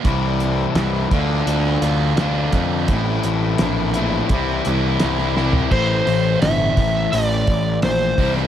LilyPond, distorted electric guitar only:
\new Staff \with { instrumentName = "Distorted electric guitar" } { \clef bass \time 4/4 \key a \phrygian \tempo 4 = 85 c4 e8 d8 d'8 f'8 d'8 a8 | a,4 e8 a8 c8 e'8 c'8 g8 | <a, e a c' e'>2.~ <a, e a c' e'>8 <c e g c' e'>8 | }